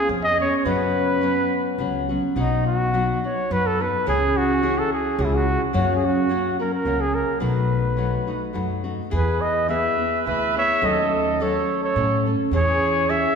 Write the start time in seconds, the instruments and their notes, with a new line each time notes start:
0.07 upright bass F2, nylon-string guitar F3 B3 C#4 G#4
0.24 trumpet D#5
0.39 nylon-string guitar B3 C#4 G#4, trumpet C#5
0.58 trumpet C#5
0.65 nylon-string guitar F#2 C#3 F#3 B3 C#4 F#4, upright bass F#2, trumpet B4
1.21 nylon-string guitar F#3 B3 C#4 F#4
1.78 upright bass C#2, nylon-string guitar F#3 B3 C#4 F#4
2.09 nylon-string guitar F#3 B3 C#4 F#4
2.36 upright bass B1, nylon-string guitar B2 F#3 B3 D#4 F#4, trumpet D#4
2.66 trumpet F#4
2.93 nylon-string guitar F#3 B3 D#4 F#4
3.24 nylon-string guitar B3 D#4 F#4, trumpet C#5
3.51 upright bass F#2, nylon-string guitar F#3 B3 D#4 F#4, trumpet B4
3.67 trumpet A4
3.80 nylon-string guitar B3 D#4 F#4, trumpet B4
4.06 upright bass C#2, nylon-string guitar C#3 E3 C#4 E4 G#4, trumpet G#4
4.37 trumpet F#4
4.62 nylon-string guitar E3 C#4 E4 G#4
4.79 trumpet A4
4.93 trumpet G#4
5.18 upright bass C#2, nylon-string guitar E3 C#4 E4 G#4, trumpet F#4
5.25 trumpet E4
5.35 trumpet F#4
5.73 nylon-string guitar F#2 C#3 F#3 A#3 C#4 F#4, upright bass F#2, trumpet F#4
5.96 trumpet G#4
6.05 trumpet F#4
6.29 nylon-string guitar F#3 A#3 C#4 F#4
6.59 nylon-string guitar F#3 A#3 C#4 F#4, trumpet A#4
6.75 trumpet A#4
6.85 upright bass C#2, nylon-string guitar F#3 A#3 C#4 F#4
7.01 trumpet G#4
7.15 trumpet A#4
7.40 upright bass B1, nylon-string guitar B2 F#3 A3 D#4 F#4, trumpet B4
7.97 nylon-string guitar F#3 A3 D#4 F#4
8.27 nylon-string guitar A3 D#4 F#4
8.53 upright bass F#2, nylon-string guitar F#3 A3 D#4 F#4
8.84 nylon-string guitar A3 D#4 F#4
9.11 upright bass E2, nylon-string guitar E3 B3 E4 G#4, trumpet G#4 B4
9.41 trumpet D#5
9.46 trumpet B4
9.69 nylon-string guitar E3 B3 E4 G#4, trumpet B4 E5
9.98 nylon-string guitar B3 E4 G#4
10.25 upright bass D2, nylon-string guitar E3 B3 E4 G#4, trumpet B4 E5
10.55 nylon-string guitar B3 E4 G#4, trumpet C#5 E5
10.82 upright bass D#2, nylon-string guitar D#3 F#3 A3 C#4 A4, trumpet A4 D#5
11.40 nylon-string guitar F#3 A3 C#4 A4, trumpet A4 C#5
11.83 trumpet A4 C#5
11.96 upright bass A2, nylon-string guitar F#3 A3 C#4 A4
12.26 nylon-string guitar A3 C#4 A4
12.51 upright bass E2, nylon-string guitar E3 C#4 E4 G#4, trumpet G#4
12.56 trumpet C#5
13.09 nylon-string guitar E3 C#4 E4 G#4, trumpet C#5 E5